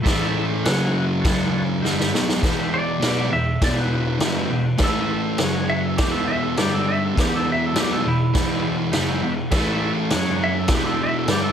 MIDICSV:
0, 0, Header, 1, 5, 480
1, 0, Start_track
1, 0, Key_signature, 1, "minor"
1, 0, Tempo, 593472
1, 49, Time_signature, 4, 2, 24, 8
1, 5329, Tempo, 587659
1, 9358, End_track
2, 0, Start_track
2, 0, Title_t, "Electric slide guitar"
2, 0, Program_c, 0, 29
2, 2214, Note_on_c, 0, 74, 83
2, 2678, Note_off_c, 0, 74, 0
2, 2692, Note_on_c, 0, 76, 76
2, 2924, Note_off_c, 0, 76, 0
2, 2945, Note_on_c, 0, 74, 89
2, 3054, Note_off_c, 0, 74, 0
2, 3073, Note_on_c, 0, 71, 78
2, 3876, Note_off_c, 0, 71, 0
2, 3913, Note_on_c, 0, 69, 89
2, 4367, Note_off_c, 0, 69, 0
2, 4607, Note_on_c, 0, 76, 108
2, 4724, Note_off_c, 0, 76, 0
2, 4734, Note_on_c, 0, 69, 76
2, 4828, Note_off_c, 0, 69, 0
2, 4832, Note_on_c, 0, 67, 90
2, 4942, Note_off_c, 0, 67, 0
2, 4946, Note_on_c, 0, 69, 90
2, 5072, Note_off_c, 0, 69, 0
2, 5075, Note_on_c, 0, 76, 88
2, 5197, Note_off_c, 0, 76, 0
2, 5200, Note_on_c, 0, 69, 90
2, 5319, Note_off_c, 0, 69, 0
2, 5325, Note_on_c, 0, 67, 87
2, 5442, Note_off_c, 0, 67, 0
2, 5455, Note_on_c, 0, 69, 82
2, 5568, Note_off_c, 0, 69, 0
2, 5570, Note_on_c, 0, 76, 93
2, 5686, Note_off_c, 0, 76, 0
2, 5709, Note_on_c, 0, 69, 82
2, 5816, Note_off_c, 0, 69, 0
2, 5834, Note_on_c, 0, 67, 92
2, 5939, Note_off_c, 0, 67, 0
2, 5960, Note_on_c, 0, 69, 85
2, 6062, Note_off_c, 0, 69, 0
2, 6092, Note_on_c, 0, 76, 90
2, 6188, Note_off_c, 0, 76, 0
2, 6206, Note_on_c, 0, 69, 97
2, 6305, Note_off_c, 0, 69, 0
2, 6318, Note_on_c, 0, 67, 85
2, 6421, Note_off_c, 0, 67, 0
2, 6425, Note_on_c, 0, 69, 88
2, 6535, Note_off_c, 0, 69, 0
2, 6549, Note_on_c, 0, 64, 106
2, 7007, Note_off_c, 0, 64, 0
2, 8472, Note_on_c, 0, 76, 100
2, 8577, Note_off_c, 0, 76, 0
2, 8599, Note_on_c, 0, 69, 86
2, 8701, Note_off_c, 0, 69, 0
2, 8724, Note_on_c, 0, 67, 90
2, 8815, Note_off_c, 0, 67, 0
2, 8819, Note_on_c, 0, 69, 90
2, 8930, Note_off_c, 0, 69, 0
2, 8959, Note_on_c, 0, 76, 93
2, 9060, Note_off_c, 0, 76, 0
2, 9085, Note_on_c, 0, 69, 101
2, 9180, Note_off_c, 0, 69, 0
2, 9183, Note_on_c, 0, 67, 97
2, 9287, Note_off_c, 0, 67, 0
2, 9290, Note_on_c, 0, 69, 82
2, 9358, Note_off_c, 0, 69, 0
2, 9358, End_track
3, 0, Start_track
3, 0, Title_t, "Transistor combo organ"
3, 0, Program_c, 1, 18
3, 16, Note_on_c, 1, 64, 79
3, 25, Note_on_c, 1, 69, 70
3, 26, Note_on_c, 1, 76, 86
3, 362, Note_off_c, 1, 64, 0
3, 366, Note_off_c, 1, 69, 0
3, 367, Note_off_c, 1, 76, 0
3, 518, Note_on_c, 1, 66, 86
3, 520, Note_on_c, 1, 78, 93
3, 526, Note_on_c, 1, 73, 80
3, 853, Note_off_c, 1, 66, 0
3, 854, Note_off_c, 1, 78, 0
3, 857, Note_off_c, 1, 73, 0
3, 974, Note_on_c, 1, 73, 74
3, 980, Note_on_c, 1, 66, 86
3, 981, Note_on_c, 1, 81, 92
3, 1321, Note_off_c, 1, 73, 0
3, 1324, Note_off_c, 1, 66, 0
3, 1324, Note_off_c, 1, 81, 0
3, 1466, Note_on_c, 1, 76, 88
3, 1467, Note_on_c, 1, 71, 77
3, 1470, Note_on_c, 1, 67, 83
3, 1807, Note_off_c, 1, 76, 0
3, 1808, Note_off_c, 1, 71, 0
3, 1809, Note_off_c, 1, 67, 0
3, 1967, Note_on_c, 1, 71, 69
3, 1972, Note_on_c, 1, 67, 81
3, 1973, Note_on_c, 1, 76, 91
3, 2298, Note_off_c, 1, 71, 0
3, 2300, Note_off_c, 1, 67, 0
3, 2301, Note_off_c, 1, 76, 0
3, 2476, Note_on_c, 1, 67, 79
3, 2476, Note_on_c, 1, 76, 79
3, 2479, Note_on_c, 1, 71, 70
3, 2792, Note_off_c, 1, 67, 0
3, 2793, Note_off_c, 1, 76, 0
3, 2794, Note_off_c, 1, 71, 0
3, 2936, Note_on_c, 1, 67, 75
3, 2937, Note_on_c, 1, 76, 81
3, 2953, Note_on_c, 1, 71, 68
3, 3262, Note_off_c, 1, 67, 0
3, 3263, Note_off_c, 1, 76, 0
3, 3271, Note_off_c, 1, 71, 0
3, 3433, Note_on_c, 1, 76, 76
3, 3437, Note_on_c, 1, 67, 75
3, 3444, Note_on_c, 1, 71, 67
3, 3751, Note_off_c, 1, 76, 0
3, 3753, Note_off_c, 1, 67, 0
3, 3756, Note_off_c, 1, 71, 0
3, 3887, Note_on_c, 1, 69, 64
3, 3896, Note_on_c, 1, 76, 73
3, 3897, Note_on_c, 1, 64, 64
3, 4217, Note_off_c, 1, 69, 0
3, 4222, Note_off_c, 1, 64, 0
3, 4222, Note_off_c, 1, 76, 0
3, 4388, Note_on_c, 1, 73, 85
3, 4391, Note_on_c, 1, 61, 78
3, 4396, Note_on_c, 1, 66, 74
3, 4708, Note_off_c, 1, 73, 0
3, 4709, Note_off_c, 1, 61, 0
3, 4711, Note_off_c, 1, 66, 0
3, 4840, Note_on_c, 1, 71, 79
3, 4847, Note_on_c, 1, 67, 69
3, 4857, Note_on_c, 1, 64, 78
3, 5172, Note_off_c, 1, 71, 0
3, 5176, Note_off_c, 1, 67, 0
3, 5181, Note_off_c, 1, 64, 0
3, 5323, Note_on_c, 1, 67, 67
3, 5324, Note_on_c, 1, 74, 82
3, 5329, Note_on_c, 1, 62, 78
3, 5656, Note_off_c, 1, 67, 0
3, 5656, Note_off_c, 1, 74, 0
3, 5659, Note_off_c, 1, 62, 0
3, 5827, Note_on_c, 1, 67, 60
3, 5830, Note_on_c, 1, 71, 75
3, 5832, Note_on_c, 1, 64, 67
3, 6149, Note_off_c, 1, 67, 0
3, 6150, Note_off_c, 1, 71, 0
3, 6151, Note_off_c, 1, 64, 0
3, 6291, Note_on_c, 1, 67, 74
3, 6295, Note_on_c, 1, 71, 86
3, 6302, Note_on_c, 1, 64, 73
3, 6621, Note_off_c, 1, 67, 0
3, 6623, Note_off_c, 1, 71, 0
3, 6626, Note_off_c, 1, 64, 0
3, 6770, Note_on_c, 1, 67, 66
3, 6780, Note_on_c, 1, 74, 80
3, 6783, Note_on_c, 1, 64, 78
3, 7101, Note_off_c, 1, 67, 0
3, 7105, Note_off_c, 1, 74, 0
3, 7107, Note_off_c, 1, 64, 0
3, 7228, Note_on_c, 1, 67, 80
3, 7239, Note_on_c, 1, 64, 87
3, 7242, Note_on_c, 1, 71, 96
3, 7569, Note_off_c, 1, 67, 0
3, 7574, Note_off_c, 1, 64, 0
3, 7576, Note_off_c, 1, 71, 0
3, 7712, Note_on_c, 1, 76, 88
3, 7720, Note_on_c, 1, 69, 69
3, 7723, Note_on_c, 1, 64, 78
3, 8051, Note_off_c, 1, 76, 0
3, 8055, Note_off_c, 1, 69, 0
3, 8056, Note_off_c, 1, 64, 0
3, 8204, Note_on_c, 1, 66, 84
3, 8212, Note_on_c, 1, 61, 94
3, 8222, Note_on_c, 1, 73, 102
3, 8535, Note_off_c, 1, 66, 0
3, 8540, Note_off_c, 1, 61, 0
3, 8544, Note_off_c, 1, 73, 0
3, 8680, Note_on_c, 1, 64, 79
3, 8692, Note_on_c, 1, 67, 69
3, 8695, Note_on_c, 1, 71, 82
3, 9012, Note_off_c, 1, 64, 0
3, 9018, Note_off_c, 1, 67, 0
3, 9020, Note_off_c, 1, 71, 0
3, 9152, Note_on_c, 1, 62, 75
3, 9169, Note_on_c, 1, 74, 83
3, 9171, Note_on_c, 1, 67, 66
3, 9358, Note_off_c, 1, 62, 0
3, 9358, Note_off_c, 1, 67, 0
3, 9358, Note_off_c, 1, 74, 0
3, 9358, End_track
4, 0, Start_track
4, 0, Title_t, "Distorted electric guitar"
4, 0, Program_c, 2, 30
4, 27, Note_on_c, 2, 45, 85
4, 37, Note_on_c, 2, 57, 98
4, 39, Note_on_c, 2, 52, 86
4, 511, Note_off_c, 2, 45, 0
4, 516, Note_off_c, 2, 52, 0
4, 516, Note_off_c, 2, 57, 0
4, 534, Note_on_c, 2, 42, 96
4, 542, Note_on_c, 2, 49, 103
4, 546, Note_on_c, 2, 54, 102
4, 998, Note_off_c, 2, 42, 0
4, 1004, Note_off_c, 2, 49, 0
4, 1007, Note_on_c, 2, 42, 99
4, 1011, Note_off_c, 2, 54, 0
4, 1014, Note_on_c, 2, 49, 93
4, 1026, Note_on_c, 2, 54, 108
4, 1481, Note_off_c, 2, 42, 0
4, 1484, Note_on_c, 2, 43, 88
4, 1485, Note_off_c, 2, 49, 0
4, 1490, Note_off_c, 2, 54, 0
4, 1497, Note_on_c, 2, 55, 99
4, 1499, Note_on_c, 2, 50, 91
4, 1720, Note_off_c, 2, 43, 0
4, 1726, Note_off_c, 2, 55, 0
4, 1727, Note_off_c, 2, 50, 0
4, 1730, Note_on_c, 2, 47, 88
4, 1732, Note_on_c, 2, 54, 106
4, 1740, Note_on_c, 2, 59, 99
4, 1949, Note_off_c, 2, 47, 0
4, 1954, Note_on_c, 2, 40, 94
4, 1959, Note_on_c, 2, 47, 90
4, 1964, Note_off_c, 2, 54, 0
4, 1968, Note_off_c, 2, 59, 0
4, 1970, Note_on_c, 2, 52, 99
4, 2415, Note_off_c, 2, 47, 0
4, 2423, Note_off_c, 2, 52, 0
4, 2424, Note_on_c, 2, 47, 86
4, 2427, Note_on_c, 2, 54, 98
4, 2435, Note_off_c, 2, 40, 0
4, 2445, Note_on_c, 2, 59, 103
4, 2668, Note_off_c, 2, 47, 0
4, 2670, Note_on_c, 2, 40, 63
4, 2671, Note_off_c, 2, 54, 0
4, 2678, Note_on_c, 2, 47, 66
4, 2680, Note_off_c, 2, 59, 0
4, 2872, Note_off_c, 2, 40, 0
4, 2876, Note_off_c, 2, 47, 0
4, 2922, Note_on_c, 2, 40, 90
4, 2933, Note_on_c, 2, 47, 91
4, 2935, Note_on_c, 2, 52, 104
4, 3391, Note_off_c, 2, 47, 0
4, 3393, Note_off_c, 2, 40, 0
4, 3394, Note_on_c, 2, 49, 86
4, 3396, Note_on_c, 2, 42, 85
4, 3403, Note_off_c, 2, 52, 0
4, 3406, Note_on_c, 2, 54, 86
4, 3630, Note_off_c, 2, 42, 0
4, 3633, Note_off_c, 2, 49, 0
4, 3633, Note_on_c, 2, 40, 64
4, 3637, Note_on_c, 2, 47, 65
4, 3641, Note_off_c, 2, 54, 0
4, 3834, Note_off_c, 2, 40, 0
4, 3835, Note_off_c, 2, 47, 0
4, 3866, Note_on_c, 2, 45, 94
4, 3870, Note_on_c, 2, 52, 92
4, 3887, Note_on_c, 2, 57, 96
4, 4350, Note_off_c, 2, 45, 0
4, 4352, Note_off_c, 2, 52, 0
4, 4355, Note_on_c, 2, 42, 92
4, 4359, Note_on_c, 2, 49, 108
4, 4360, Note_off_c, 2, 57, 0
4, 4363, Note_on_c, 2, 54, 92
4, 4834, Note_off_c, 2, 42, 0
4, 4836, Note_off_c, 2, 49, 0
4, 4838, Note_off_c, 2, 54, 0
4, 4839, Note_on_c, 2, 40, 92
4, 4844, Note_on_c, 2, 47, 96
4, 4850, Note_on_c, 2, 52, 101
4, 5314, Note_off_c, 2, 40, 0
4, 5317, Note_off_c, 2, 47, 0
4, 5317, Note_on_c, 2, 43, 81
4, 5320, Note_off_c, 2, 52, 0
4, 5328, Note_on_c, 2, 50, 89
4, 5333, Note_on_c, 2, 55, 91
4, 5781, Note_off_c, 2, 43, 0
4, 5784, Note_on_c, 2, 40, 91
4, 5793, Note_off_c, 2, 50, 0
4, 5797, Note_on_c, 2, 47, 96
4, 5802, Note_off_c, 2, 55, 0
4, 5806, Note_on_c, 2, 52, 98
4, 6260, Note_off_c, 2, 47, 0
4, 6270, Note_on_c, 2, 47, 85
4, 6271, Note_off_c, 2, 40, 0
4, 6280, Note_off_c, 2, 52, 0
4, 6283, Note_on_c, 2, 54, 100
4, 6290, Note_on_c, 2, 59, 103
4, 6514, Note_off_c, 2, 47, 0
4, 6520, Note_off_c, 2, 54, 0
4, 6524, Note_off_c, 2, 59, 0
4, 6526, Note_on_c, 2, 40, 66
4, 6530, Note_on_c, 2, 47, 70
4, 6721, Note_off_c, 2, 40, 0
4, 6723, Note_off_c, 2, 47, 0
4, 6757, Note_on_c, 2, 47, 96
4, 6760, Note_on_c, 2, 40, 96
4, 6771, Note_on_c, 2, 52, 97
4, 7237, Note_off_c, 2, 47, 0
4, 7239, Note_off_c, 2, 40, 0
4, 7244, Note_off_c, 2, 52, 0
4, 7244, Note_on_c, 2, 42, 93
4, 7249, Note_on_c, 2, 49, 87
4, 7259, Note_on_c, 2, 54, 98
4, 7481, Note_off_c, 2, 42, 0
4, 7483, Note_off_c, 2, 49, 0
4, 7488, Note_off_c, 2, 54, 0
4, 7490, Note_on_c, 2, 40, 69
4, 7496, Note_on_c, 2, 47, 77
4, 7683, Note_off_c, 2, 40, 0
4, 7712, Note_off_c, 2, 47, 0
4, 7712, Note_on_c, 2, 45, 99
4, 7717, Note_on_c, 2, 52, 93
4, 7735, Note_on_c, 2, 57, 99
4, 8205, Note_off_c, 2, 57, 0
4, 8207, Note_on_c, 2, 42, 98
4, 8208, Note_off_c, 2, 45, 0
4, 8208, Note_on_c, 2, 49, 104
4, 8215, Note_off_c, 2, 52, 0
4, 8215, Note_on_c, 2, 54, 110
4, 8675, Note_off_c, 2, 42, 0
4, 8678, Note_on_c, 2, 40, 92
4, 8681, Note_off_c, 2, 49, 0
4, 8684, Note_off_c, 2, 54, 0
4, 8684, Note_on_c, 2, 47, 101
4, 8687, Note_on_c, 2, 52, 105
4, 9150, Note_off_c, 2, 40, 0
4, 9154, Note_on_c, 2, 43, 90
4, 9157, Note_off_c, 2, 47, 0
4, 9159, Note_off_c, 2, 52, 0
4, 9163, Note_on_c, 2, 50, 93
4, 9170, Note_on_c, 2, 55, 87
4, 9358, Note_off_c, 2, 43, 0
4, 9358, Note_off_c, 2, 50, 0
4, 9358, Note_off_c, 2, 55, 0
4, 9358, End_track
5, 0, Start_track
5, 0, Title_t, "Drums"
5, 47, Note_on_c, 9, 36, 103
5, 51, Note_on_c, 9, 49, 62
5, 55, Note_on_c, 9, 38, 116
5, 128, Note_off_c, 9, 36, 0
5, 131, Note_off_c, 9, 49, 0
5, 135, Note_off_c, 9, 38, 0
5, 529, Note_on_c, 9, 49, 61
5, 533, Note_on_c, 9, 38, 119
5, 610, Note_off_c, 9, 49, 0
5, 614, Note_off_c, 9, 38, 0
5, 1008, Note_on_c, 9, 49, 63
5, 1009, Note_on_c, 9, 36, 120
5, 1013, Note_on_c, 9, 38, 121
5, 1089, Note_off_c, 9, 49, 0
5, 1090, Note_off_c, 9, 36, 0
5, 1093, Note_off_c, 9, 38, 0
5, 1494, Note_on_c, 9, 38, 66
5, 1575, Note_off_c, 9, 38, 0
5, 1620, Note_on_c, 9, 38, 74
5, 1701, Note_off_c, 9, 38, 0
5, 1738, Note_on_c, 9, 38, 99
5, 1819, Note_off_c, 9, 38, 0
5, 1853, Note_on_c, 9, 38, 92
5, 1934, Note_off_c, 9, 38, 0
5, 1966, Note_on_c, 9, 36, 100
5, 1971, Note_on_c, 9, 49, 59
5, 1975, Note_on_c, 9, 38, 106
5, 2047, Note_off_c, 9, 36, 0
5, 2052, Note_off_c, 9, 49, 0
5, 2056, Note_off_c, 9, 38, 0
5, 2444, Note_on_c, 9, 49, 61
5, 2448, Note_on_c, 9, 38, 105
5, 2525, Note_off_c, 9, 49, 0
5, 2529, Note_off_c, 9, 38, 0
5, 2925, Note_on_c, 9, 49, 68
5, 2926, Note_on_c, 9, 36, 107
5, 2929, Note_on_c, 9, 38, 120
5, 3006, Note_off_c, 9, 49, 0
5, 3007, Note_off_c, 9, 36, 0
5, 3010, Note_off_c, 9, 38, 0
5, 3399, Note_on_c, 9, 49, 65
5, 3404, Note_on_c, 9, 38, 115
5, 3480, Note_off_c, 9, 49, 0
5, 3484, Note_off_c, 9, 38, 0
5, 3868, Note_on_c, 9, 49, 60
5, 3872, Note_on_c, 9, 38, 102
5, 3882, Note_on_c, 9, 36, 101
5, 3949, Note_off_c, 9, 49, 0
5, 3953, Note_off_c, 9, 38, 0
5, 3963, Note_off_c, 9, 36, 0
5, 4352, Note_on_c, 9, 49, 57
5, 4356, Note_on_c, 9, 38, 108
5, 4433, Note_off_c, 9, 49, 0
5, 4437, Note_off_c, 9, 38, 0
5, 4837, Note_on_c, 9, 49, 67
5, 4841, Note_on_c, 9, 38, 120
5, 4844, Note_on_c, 9, 36, 105
5, 4918, Note_off_c, 9, 49, 0
5, 4922, Note_off_c, 9, 38, 0
5, 4925, Note_off_c, 9, 36, 0
5, 5317, Note_on_c, 9, 49, 59
5, 5321, Note_on_c, 9, 38, 106
5, 5398, Note_off_c, 9, 49, 0
5, 5402, Note_off_c, 9, 38, 0
5, 5808, Note_on_c, 9, 36, 103
5, 5812, Note_on_c, 9, 49, 57
5, 5816, Note_on_c, 9, 38, 107
5, 5889, Note_off_c, 9, 36, 0
5, 5894, Note_off_c, 9, 49, 0
5, 5898, Note_off_c, 9, 38, 0
5, 6282, Note_on_c, 9, 49, 64
5, 6286, Note_on_c, 9, 38, 117
5, 6364, Note_off_c, 9, 49, 0
5, 6368, Note_off_c, 9, 38, 0
5, 6766, Note_on_c, 9, 49, 66
5, 6767, Note_on_c, 9, 36, 111
5, 6770, Note_on_c, 9, 38, 118
5, 6848, Note_off_c, 9, 49, 0
5, 6849, Note_off_c, 9, 36, 0
5, 6852, Note_off_c, 9, 38, 0
5, 7240, Note_on_c, 9, 49, 67
5, 7244, Note_on_c, 9, 38, 110
5, 7322, Note_off_c, 9, 49, 0
5, 7326, Note_off_c, 9, 38, 0
5, 7719, Note_on_c, 9, 49, 68
5, 7723, Note_on_c, 9, 36, 108
5, 7723, Note_on_c, 9, 38, 107
5, 7801, Note_off_c, 9, 49, 0
5, 7805, Note_off_c, 9, 36, 0
5, 7805, Note_off_c, 9, 38, 0
5, 8200, Note_on_c, 9, 49, 65
5, 8205, Note_on_c, 9, 38, 109
5, 8282, Note_off_c, 9, 49, 0
5, 8286, Note_off_c, 9, 38, 0
5, 8669, Note_on_c, 9, 49, 63
5, 8673, Note_on_c, 9, 38, 126
5, 8680, Note_on_c, 9, 36, 109
5, 8751, Note_off_c, 9, 49, 0
5, 8755, Note_off_c, 9, 38, 0
5, 8761, Note_off_c, 9, 36, 0
5, 9159, Note_on_c, 9, 49, 61
5, 9163, Note_on_c, 9, 38, 109
5, 9240, Note_off_c, 9, 49, 0
5, 9244, Note_off_c, 9, 38, 0
5, 9358, End_track
0, 0, End_of_file